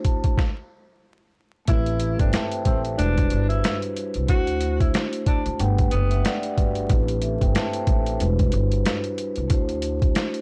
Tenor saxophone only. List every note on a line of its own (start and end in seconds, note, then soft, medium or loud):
1.68 2.16 E4 loud
2.20 2.32 D4 medium
2.65 2.82 C4 medium
2.98 3.47 D4 loud
3.49 3.78 E4 medium
4.29 4.77 F#4 loud
4.81 4.93 E4 medium
5.27 5.44 D4 medium
5.91 6.40 B3 medium